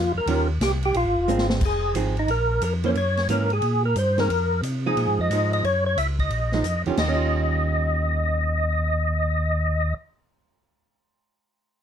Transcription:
Already playing: tonewheel organ F2 F4
0.15 tonewheel organ F2 A#4
0.26 tonewheel organ D#2, hollow-body jazz guitar D#3 G3 C#4 F4, ride
0.60 tonewheel organ C2 G4, snare, hi-hat pedal, ride
0.82 tonewheel organ G4, ride
0.94 tonewheel organ A#1 F4, ride
1.06 tonewheel organ G#1
1.17 tonewheel organ F1
1.28 tonewheel organ G#1, hollow-body jazz guitar G#3 C4 D4, hi-hat pedal
1.38 snare
1.50 snare
1.61 tonewheel organ F1, kick, crash
1.65 tonewheel organ G#4
1.94 tonewheel organ G#1, hollow-body jazz guitar F3 C4 D#4 G#4, hi-hat pedal, ride
2.17 tonewheel organ D#4, ride
2.28 tonewheel organ A#1 A#4, ride
2.61 tonewheel organ F2 A#4, hi-hat pedal, ride
2.83 hollow-body jazz guitar E3 A#3 C#4, tonewheel organ C5, ride
2.95 tonewheel organ F#2 C#5, ride
3.17 snare, ride
3.28 tonewheel organ G#2 A#4, hollow-body jazz guitar E3 A#3 C#4, hi-hat pedal, ride
3.50 tonewheel organ G#4, ride
3.62 tonewheel organ A#2, ride
3.85 tonewheel organ A#4
3.96 tonewheel organ G2 C5, hi-hat pedal, ride
4.18 hollow-body jazz guitar D#3 G#3 C4, tonewheel organ A#4, snare, ride
4.29 tonewheel organ F2, ride
4.62 tonewheel organ C3, hi-hat pedal, ride
4.86 hollow-body jazz guitar F3 G#3 D#4, tonewheel organ G#4
4.96 tonewheel organ A#2, ride
5.07 tonewheel organ G#2
5.19 tonewheel organ F2 D#5
5.30 tonewheel organ G#2, hollow-body jazz guitar F3 G#3 D#4, hi-hat pedal, ride
5.53 tonewheel organ D#5, ride
5.63 tonewheel organ F#2 C#5, ride
5.86 tonewheel organ C#5
5.97 tonewheel organ C#2 E5, hi-hat pedal, ride
6.19 tonewheel organ D#5, kick, ride
6.30 tonewheel organ A#1, ride
6.52 hollow-body jazz guitar F3 G#3 D#4, snare
6.64 tonewheel organ F2, hi-hat pedal, ride
6.86 tonewheel organ F2, hollow-body jazz guitar D#3 G3 C#4 F4, ride
6.91 hollow-body jazz guitar D#3
6.97 tonewheel organ D#2 D#5, hollow-body jazz guitar G3, snare, crash
7.08 hollow-body jazz guitar C#4
7.16 hollow-body jazz guitar F4

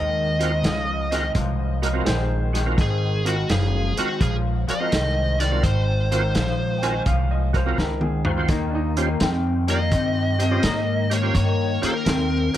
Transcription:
Already playing: upright bass D#2, clean electric guitar G#2 D#3, lead electric guitar D#5
0.39 clean electric guitar G#2 D#3, tonewheel organ C4 F4 F#4 A#4, closed hi-hat
0.64 upright bass C#2, clean electric guitar G#2 F3, snare, closed hi-hat
1.11 clean electric guitar G#2 D#3, tonewheel organ C4 F4 F#4 A#4, upright piano D#5, snare, closed hi-hat
1.35 upright bass C2, clean electric guitar G#2 F3, kick, closed hi-hat
1.82 clean electric guitar G#2 F3, tonewheel organ F#4 A#4, upright piano D#5, closed hi-hat
1.93 tonewheel organ C4 F4 F#4 A#4
2.05 upright bass A#1, clean electric guitar G#2 D#3, upright piano G#4 C5, snare, closed hi-hat
2.53 clean electric guitar G#2 D#3, tonewheel organ F#4 G#4, snare, closed hi-hat
2.66 tonewheel organ C4 F4 F#4 A#4
2.77 upright bass G#1, clean electric guitar G#2 D#3, kick, snare, closed hi-hat
2.81 lead electric guitar G#4
3.24 clean electric guitar G#2 D#3, tonewheel organ C4 F4 F#4 A#4, lead electric guitar F#4, closed hi-hat
3.49 upright bass F#1, clean electric guitar G#2 F3, lead electric guitar G#4, snare, closed hi-hat
3.97 clean electric guitar G#2 D#3, tonewheel organ C4 F4 F#4 A#4, lead electric guitar F#4, muted upright bass stroke, closed hi-hat
4.20 upright bass A#1, clean electric guitar G#2 F3, lead electric guitar G#4, kick, closed hi-hat
4.67 clean electric guitar G#2 F3, tonewheel organ F#4 A#4, lead electric guitar D#5, muted upright bass stroke, closed hi-hat
4.80 tonewheel organ C4 F4 F#4 A#4
4.91 upright bass C2, clean electric guitar G#2 D#3, snare, closed hi-hat
5.39 clean electric guitar G#2 D#3, tonewheel organ F#4 A#4, lead electric guitar D5, snare, closed hi-hat
5.51 tonewheel organ C4 F4 F#4 A#4
5.63 upright bass G#1, clean electric guitar G#2 D#3, lead electric guitar C5, kick, closed hi-hat
6.11 clean electric guitar G#2 D#3, tonewheel organ C4 F4 F#4 C5, closed hi-hat
6.35 upright bass A#1, clean electric guitar G#2 F3, snare, closed hi-hat
6.78 tonewheel organ C4, upright piano G5
6.83 clean electric guitar G#2 D#3, tonewheel organ F4 F#4 A#4, upright piano G#5, closed hi-hat
7.06 upright bass C2, clean electric guitar G#2 F3, upright piano F5, kick, closed hi-hat
7.31 upright piano D#5
7.53 clean electric guitar G#2 F3, tonewheel organ F#4 A#4, upright piano C5, kick, closed hi-hat
7.66 tonewheel organ C4 F4 F#4 A#4
7.78 upright bass C#2, clean electric guitar G#2 D#3, upright piano A#4, snare
8.01 upright piano G#4, mid tom
8.25 clean electric guitar G#2 D#3, upright piano F4, tonewheel organ F#4 C5, floor tom
8.36 tonewheel organ C4 F4 F#4 C5
8.48 upright bass D#2, clean electric guitar D#3 A#3, upright piano D#4, kick, snare, closed hi-hat
8.70 upright piano D4
8.75 upright piano D#4
8.97 clean electric guitar D#3 A#3, tonewheel organ C#4 F4 G4 C5, closed hi-hat
9.20 upright bass F2, clean electric guitar D#3 C4, snare, closed hi-hat
9.67 clean electric guitar D#3 A#3, tonewheel organ C#4 F4 G4 A#4, lead electric guitar D#5, closed hi-hat
9.91 upright bass G2, clean electric guitar D#3 C4, kick, closed hi-hat
10.38 clean electric guitar D#3 C4, tonewheel organ G4 C5, closed hi-hat
10.51 tonewheel organ C#4 F4 G4 C5
10.63 upright bass G#2, clean electric guitar D#3 A#3, snare, closed hi-hat
11.10 clean electric guitar D#3 A#3, tonewheel organ G4 C5, lead electric guitar C#5, closed hi-hat
11.22 tonewheel organ C#4 F4 G4 C5
11.34 upright bass G2, clean electric guitar D#3 A#3, lead electric guitar C#5, kick, closed hi-hat
11.82 clean electric guitar D#3 A#3, tonewheel organ C#4 F4 G4 C5, lead electric guitar A#4, muted upright bass stroke, closed hi-hat
12.06 upright bass D#2, clean electric guitar D#3 C4, snare, closed hi-hat
12.54 clean electric guitar D#3, tonewheel organ C#4 F4 G4 C5, closed hi-hat

